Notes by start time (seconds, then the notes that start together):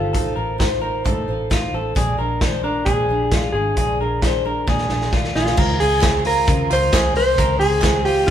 Already playing: G1 D#4 F4 A4 C5
0.13 A1 A3 D#4 F4 A4 C5, kick, closed hi-hat
0.36 A1 D#4 F4 A#4 C5
0.58 A3 D#4 F4 C5, kick, snare, closed hi-hat
0.81 D#4 F4 A#4 C5
1.04 A2 A3 D#4 F4 A4 C5, kick, closed hi-hat
1.28 A1 D#4 F4 C5
1.50 A3 D#4 F4 C5, kick, snare, closed hi-hat
1.73 A1 D#4 F4 A4 C5
1.95 A#1 A#2 F3 G#3 D4 F4 G#4, kick, closed hi-hat
2.18 A#1 G#3 D4 F4 A#4
2.41 F3 G#3 D4 F4 C5, kick, snare, closed hi-hat
2.63 G#3 D4 F4 A#4
2.85 A#2 F3 G#3 D4 F4 G#4, kick, closed hi-hat
3.08 A#1 G#3 D4 F4
3.31 F3 G#3 D4 F4, kick, snare, closed hi-hat
3.52 G#1 D4 F4 G#4
3.77 A#1 A#2 F3 G#3 D4 F4 G#4, kick, closed hi-hat
3.99 A#1 G#3 D4 F4 A#4
4.22 F3 G#3 D4 F4 C5, kick, snare, closed hi-hat
4.45 G#3 D4 F4 A#4
4.67 A#2 F3 G#3 D4 F4 G#4, kick, snare
4.78 snare
4.89 A#1 G#3 D4 F4, snare
5.01 snare
5.12 F3 G#3 D4 F4, kick, snare
5.24 snare
5.35 A#1 G#3 D4 F4 G#4 F5, snare
5.46 snare
5.56 C#2 C#3 G#3 C4 F4 A#4, kick, crash
5.79 C#2 G#3 C4 F4 G#4 G#5, open hi-hat
6.01 C#3 G#3 C4 F4, kick, snare, clap, hi-hat pedal, ride
6.25 G#3 C4 F4 A#4 A#5, open hi-hat
6.47 C#3 G#3 C4 F4, kick, hi-hat pedal, ride
6.70 C#2 G#3 C4 F4 C5 C6, clap, open hi-hat
6.92 C2 C#3 G#3 C4 F4 G#4, kick, snare, clap, hi-hat pedal, ride
7.14 C2 G#3 C4 F4 C5 C6, open hi-hat
7.38 C#2 C#3 G#3 C4 F4 A#4, kick, hi-hat pedal, ride
7.60 C#2 C4 F4 G#4 G#5, open hi-hat
7.82 C#3 G#3 C4 F4, kick, snare, clap, hi-hat pedal, ride
8.05 G#3 C4 F4 G4 G5, open hi-hat
8.27 F4